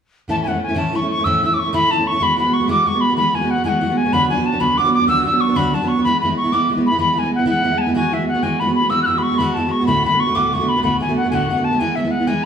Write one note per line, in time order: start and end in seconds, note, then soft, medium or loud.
0.28 0.46 A2 soft
0.28 0.45 E3 medium
0.28 0.46 A3 medium
0.28 0.47 C#4 medium
0.28 0.47 E4 medium
0.28 0.36 A5 medium
0.43 0.54 E3 medium
0.43 0.54 A3 medium
0.43 0.49 G#5 medium
0.48 0.53 C#4 medium
0.48 0.52 E4 medium
0.48 0.62 F#5 medium
0.53 0.70 A3 soft
0.53 0.68 C#4 soft
0.53 0.67 E4 soft
0.63 0.80 G#5 medium
0.69 0.75 A3 soft
0.69 0.75 C#4 soft
0.69 0.75 E4 soft
0.75 0.93 A2 medium
0.75 0.92 E3 medium
0.75 0.92 A3 medium
0.75 0.93 C#4 medium
0.75 0.94 E4 medium
0.75 0.97 A5 medium
0.93 1.01 E3 medium
0.93 1.02 A3 medium
0.93 1.02 C#4 medium
0.93 1.00 E4 medium
0.93 1.10 C#6 medium
1.02 1.18 A3 soft
1.02 1.18 C#4 soft
1.02 1.17 E4 soft
1.11 1.26 C#6 medium
1.18 1.25 A3 soft
1.18 1.25 C#4 soft
1.18 1.25 E4 soft
1.24 1.43 A2 medium
1.24 1.41 E3 medium
1.24 1.42 A3 medium
1.24 1.43 C#4 medium
1.24 1.43 E4 medium
1.24 1.42 E6 medium
1.43 1.50 E3 medium
1.43 1.50 A3 medium
1.43 1.51 C#4 soft
1.43 1.50 E4 medium
1.43 1.55 E6 medium
1.51 1.66 A3 soft
1.51 1.65 C#4 soft
1.51 1.63 E4 soft
1.51 1.60 D6 medium
1.58 1.73 C#6 medium
1.65 1.72 A3 soft
1.65 1.73 C#4 soft
1.65 1.72 E4 soft
1.73 1.90 A2 medium
1.73 1.89 E3 medium
1.73 1.90 A3 medium
1.73 1.91 C#4 medium
1.73 1.91 E4 medium
1.73 1.92 B5 medium
1.90 1.98 E3 medium
1.90 1.98 A3 medium
1.90 1.98 C#4 medium
1.90 1.97 E4 medium
1.90 2.09 A5 medium
1.98 2.13 A3 soft
1.98 2.12 C#4 soft
1.98 2.11 E4 medium
2.07 2.24 C#6 medium
2.12 2.20 A3 soft
2.12 2.21 C#4 soft
2.12 2.20 E4 soft
2.20 2.35 E3 medium
2.20 2.37 G#3 medium
2.20 2.37 B3 medium
2.20 2.38 F#4 medium
2.20 2.39 B5 medium
2.36 2.45 E3 medium
2.36 2.46 G#3 soft
2.36 2.45 B3 medium
2.36 2.43 F#4 medium
2.36 2.55 B5 medium
2.44 2.61 G#3 soft
2.44 2.60 B3 soft
2.44 2.59 F#4 soft
2.53 2.68 C#6 medium
2.60 2.68 G#3 soft
2.60 2.68 B3 soft
2.60 2.68 F#4 soft
2.68 2.84 E3 medium
2.68 2.85 G#3 medium
2.68 2.86 B3 medium
2.68 2.87 F#4 medium
2.68 2.88 D6 medium
2.85 2.93 E3 medium
2.85 2.93 G#3 soft
2.85 2.94 B3 medium
2.85 2.92 F#4 medium
2.85 3.02 C#6 medium
2.93 3.10 G#3 soft
2.93 3.09 B3 soft
2.93 3.08 F#4 soft
3.01 3.16 B5 medium
3.09 3.16 G#3 soft
3.09 3.17 B3 soft
3.09 3.17 F#4 soft
3.16 3.32 E3 medium
3.16 3.33 G#3 medium
3.16 3.34 B3 medium
3.16 3.35 F#4 medium
3.16 3.36 B5 medium
3.33 3.41 E3 medium
3.33 3.41 G#3 medium
3.33 3.41 B3 soft
3.33 3.40 F#4 medium
3.33 3.52 G#5 medium
3.41 3.57 G#3 soft
3.41 3.56 B3 soft
3.41 3.54 F#4 soft
3.50 3.65 F#5 medium
3.56 3.64 G#3 soft
3.56 3.64 B3 soft
3.56 3.64 F#4 soft
3.64 3.80 E3 medium
3.64 3.80 G#3 medium
3.64 3.81 B3 medium
3.64 3.82 F#4 medium
3.64 3.70 G#5 medium
3.69 3.98 F#5 medium
3.81 3.89 E3 medium
3.81 3.89 G#3 medium
3.81 3.89 B3 medium
3.81 3.89 F#4 medium
3.90 4.05 G#3 soft
3.90 4.05 B3 soft
3.90 4.03 F#4 medium
3.97 4.14 G#5 medium
4.04 4.13 G#3 soft
4.04 4.13 B3 soft
4.04 4.12 F#4 soft
4.13 4.30 D2 medium
4.13 4.30 D3 medium
4.13 4.29 F#3 medium
4.13 4.30 B3 medium
4.13 4.30 D4 medium
4.13 4.30 F#4 medium
4.13 4.29 B5 loud
4.30 4.37 F#3 medium
4.30 4.38 B3 medium
4.30 4.38 D4 medium
4.30 4.36 F#4 medium
4.30 4.47 G#5 medium
4.38 4.54 F#3 soft
4.38 4.53 B3 soft
4.38 4.52 D4 soft
4.38 4.51 F#4 soft
4.46 4.62 A5 medium
4.52 4.59 F#3 soft
4.52 4.59 B3 soft
4.52 4.60 D4 soft
4.52 4.60 F#4 soft
4.60 4.77 D2 medium
4.60 4.77 D3 medium
4.60 4.77 F#3 medium
4.60 4.78 B3 medium
4.60 4.78 D4 medium
4.60 4.78 F#4 medium
4.60 4.79 B5 medium
4.77 4.85 F#3 soft
4.77 4.85 B3 medium
4.77 4.84 D4 medium
4.77 4.83 F#4 medium
4.77 4.92 D6 medium
4.84 5.01 F#3 soft
4.84 5.00 B3 soft
4.84 4.99 D4 soft
4.84 4.98 F#4 medium
4.94 5.07 D6 medium
5.00 5.07 F#3 soft
5.00 5.07 B3 soft
5.00 5.07 D4 soft
5.00 5.07 F#4 soft
5.07 5.25 D2 medium
5.07 5.25 D3 medium
5.07 5.23 F#3 medium
5.07 5.25 B3 medium
5.07 5.25 D4 medium
5.07 5.26 F#4 medium
5.07 5.24 E6 loud
5.24 5.32 F#3 soft
5.24 5.32 B3 soft
5.24 5.30 D4 medium
5.24 5.30 F#4 medium
5.24 5.42 E6 medium
5.31 5.48 F#3 soft
5.31 5.48 B3 soft
5.31 5.47 D4 soft
5.31 5.46 F#4 soft
5.41 5.58 C#6 medium
5.47 5.55 F#3 soft
5.47 5.55 B3 soft
5.47 5.55 D4 soft
5.47 5.55 F#4 soft
5.55 5.73 D2 medium
5.55 5.73 D3 medium
5.55 5.72 F#3 medium
5.55 5.73 B3 medium
5.55 5.73 D4 medium
5.55 5.74 F#4 medium
5.55 5.76 B5 medium
5.74 5.81 F#3 medium
5.74 5.81 B3 medium
5.74 5.82 D4 medium
5.74 5.81 F#4 medium
5.74 5.89 A5 medium
5.82 5.98 F#3 soft
5.82 5.97 B3 soft
5.82 5.97 D4 soft
5.82 5.96 F#4 soft
5.88 6.03 C#6 medium
5.97 6.05 F#3 soft
5.97 6.05 B3 soft
5.97 6.04 D4 soft
5.97 6.04 F#4 soft
6.04 6.22 E3 medium
6.04 6.23 G#3 medium
6.04 6.22 B3 medium
6.04 6.23 E4 medium
6.04 6.20 B5 loud
6.20 6.29 E3 medium
6.20 6.30 G#3 medium
6.20 6.35 B5 medium
6.25 6.30 B3 medium
6.25 6.29 E4 medium
6.30 6.45 G#3 soft
6.30 6.44 B3 soft
6.30 6.43 E4 soft
6.37 6.54 C#6 medium
6.44 6.52 G#3 soft
6.44 6.52 B3 soft
6.44 6.51 E4 soft
6.52 6.68 E3 medium
6.52 6.69 G#3 medium
6.52 6.70 B3 medium
6.52 6.70 E4 medium
6.52 6.69 D6 medium
6.70 6.77 E3 medium
6.70 6.77 G#3 medium
6.70 6.77 B3 medium
6.70 6.76 E4 medium
6.77 6.92 G#3 soft
6.77 6.91 B3 medium
6.77 6.90 E4 soft
6.86 6.99 B5 medium
6.91 6.98 G#3 soft
6.91 6.98 B3 soft
6.91 6.98 E4 soft
6.98 7.14 E3 medium
6.98 7.16 G#3 medium
6.98 7.16 B3 medium
6.98 7.17 E4 medium
6.98 7.20 B5 medium
7.15 7.24 E3 medium
7.15 7.24 G#3 soft
7.15 7.23 B3 medium
7.15 7.22 E4 medium
7.15 7.33 G#5 medium
7.23 7.40 G#3 soft
7.23 7.39 B3 soft
7.23 7.37 E4 soft
7.35 7.46 E4 soft
7.35 7.47 F#5 medium
7.40 7.45 G#3 soft
7.40 7.46 B3 soft
7.46 7.62 E3 medium
7.46 7.63 G#3 medium
7.46 7.63 B3 medium
7.46 7.64 E4 medium
7.46 7.79 F#5 medium
7.63 7.71 E3 medium
7.63 7.72 G#3 medium
7.63 7.71 B3 medium
7.63 7.70 E4 medium
7.71 7.88 G#3 soft
7.71 7.87 B3 soft
7.71 7.86 E4 soft
7.78 7.95 G#5 medium
7.78 7.82 A5 medium
7.87 7.94 G#3 soft
7.87 7.94 B3 soft
7.87 7.95 E4 soft
7.94 8.10 E3 medium
7.94 8.12 G#3 medium
7.94 8.13 B3 medium
7.94 8.13 F#4 medium
7.94 8.15 G#5 medium
8.12 8.20 E3 medium
8.12 8.20 G#3 medium
8.12 8.19 B3 medium
8.12 8.18 F#4 medium
8.12 8.27 E5 medium
8.19 8.36 G#3 soft
8.19 8.34 B3 soft
8.19 8.33 F#4 soft
8.28 8.44 F#5 medium
8.34 8.42 G#3 soft
8.34 8.42 B3 soft
8.34 8.42 F#4 soft
8.42 8.59 E3 medium
8.42 8.60 G#3 medium
8.42 8.60 B3 medium
8.42 8.61 F#4 medium
8.42 8.61 G#5 medium
8.60 8.68 E3 soft
8.60 8.68 G#3 medium
8.60 8.67 B3 medium
8.60 8.66 F#4 medium
8.60 8.74 B5 medium
8.67 8.83 G#3 soft
8.67 8.82 B3 soft
8.67 8.80 F#4 soft
8.75 8.91 B5 medium
8.82 8.89 G#3 soft
8.82 8.90 B3 soft
8.82 8.90 F#4 soft
8.90 9.06 E3 medium
8.90 9.07 G#3 medium
8.90 9.08 B3 medium
8.90 9.09 F#4 medium
8.90 9.02 E6 medium
9.03 9.20 E6 medium
9.03 9.07 F#6 medium
9.07 9.15 E3 soft
9.07 9.16 G#3 medium
9.07 9.16 B3 medium
9.07 9.16 F#4 medium
9.17 9.32 G#3 soft
9.17 9.32 B3 soft
9.17 9.30 F#4 soft
9.17 9.24 B5 medium
9.23 9.40 C#6 medium
9.31 9.39 G#3 soft
9.31 9.40 B3 soft
9.31 9.39 F#4 soft
9.38 9.55 E3 medium
9.38 9.56 G#3 medium
9.38 9.57 B3 medium
9.38 9.57 F#4 medium
9.38 9.56 B5 medium
9.54 9.64 E3 medium
9.54 9.64 G#3 medium
9.54 9.73 A5 medium
9.59 9.65 B3 medium
9.59 9.65 F#4 medium
9.66 9.81 G#3 soft
9.66 9.81 B3 soft
9.66 9.80 F#4 soft
9.71 9.86 C#6 medium
9.81 9.88 G#3 soft
9.81 9.87 B3 soft
9.81 9.87 F#4 medium
9.86 10.04 D2 medium
9.86 10.05 A2 medium
9.86 10.03 D3 medium
9.86 10.04 A3 medium
9.86 10.05 B3 medium
9.86 10.05 F#4 medium
9.86 10.03 B5 medium
10.04 10.12 D3 medium
10.04 10.13 A3 medium
10.04 10.12 B3 medium
10.04 10.11 F#4 medium
10.04 10.21 B5 medium
10.12 10.29 D3 soft
10.12 10.28 A3 soft
10.12 10.26 B3 soft
10.12 10.26 F#4 soft
10.20 10.37 C#6 medium
10.27 10.34 D3 soft
10.27 10.34 A3 soft
10.27 10.34 B3 soft
10.27 10.35 F#4 soft
10.35 10.52 D2 medium
10.35 10.52 A2 medium
10.35 10.52 D3 medium
10.35 10.52 A3 medium
10.35 10.53 B3 medium
10.35 10.53 F#4 medium
10.35 10.55 D6 medium
10.53 10.60 D3 medium
10.53 10.60 A3 soft
10.53 10.60 B3 medium
10.53 10.58 F#4 medium
10.53 10.70 C#6 medium
10.60 10.76 D3 soft
10.60 10.76 A3 soft
10.60 10.76 B3 soft
10.60 10.75 F#4 soft
10.69 10.83 B5 medium
10.76 10.82 D3 soft
10.76 10.83 A3 soft
10.76 10.83 B3 soft
10.76 10.83 F#4 soft
10.83 11.00 D2 medium
10.83 11.00 A2 medium
10.83 10.99 D3 medium
10.83 10.99 A3 medium
10.83 11.01 B3 medium
10.83 11.01 F#4 medium
10.83 10.99 B5 medium
11.00 11.08 D3 soft
11.00 11.08 A3 medium
11.00 11.08 B3 medium
11.00 11.07 F#4 medium
11.00 11.15 G#5 medium
11.09 11.25 D3 soft
11.09 11.24 A3 soft
11.09 11.24 B3 soft
11.09 11.23 F#4 medium
11.16 11.30 F#5 medium
11.24 11.31 D3 soft
11.24 11.32 A3 soft
11.24 11.32 B3 soft
11.24 11.31 F#4 soft
11.30 11.49 D2 medium
11.30 11.49 A2 medium
11.30 11.48 D3 medium
11.30 11.49 A3 medium
11.30 11.49 B3 medium
11.30 11.50 F#4 medium
11.30 11.36 G#5 medium
11.35 11.66 F#5 medium
11.49 11.56 D3 medium
11.49 11.57 A3 medium
11.49 11.56 B3 medium
11.49 11.56 F#4 medium
11.57 11.73 D3 soft
11.57 11.72 A3 soft
11.57 11.71 B3 soft
11.57 11.70 F#4 soft
11.64 11.81 A5 medium
11.71 11.80 D3 soft
11.71 11.80 A3 soft
11.71 11.79 B3 soft
11.71 11.79 F#4 soft
11.79 11.96 E3 medium
11.79 11.96 G#3 medium
11.79 11.97 B3 medium
11.79 11.97 E4 medium
11.79 11.97 G#5 medium
11.95 12.04 E3 medium
11.95 12.04 G#3 medium
11.95 12.05 B3 medium
11.95 12.03 E4 medium
11.95 12.12 E5 medium
12.05 12.21 G#3 soft
12.05 12.20 B3 soft
12.05 12.19 E4 soft
12.11 12.29 F#5 medium
12.20 12.26 G#3 soft
12.20 12.27 B3 soft
12.20 12.27 E4 soft
12.27 12.43 E3 medium
12.27 12.44 G#3 medium
12.27 12.45 B3 medium
12.27 12.45 E4 medium
12.27 12.45 G#5 medium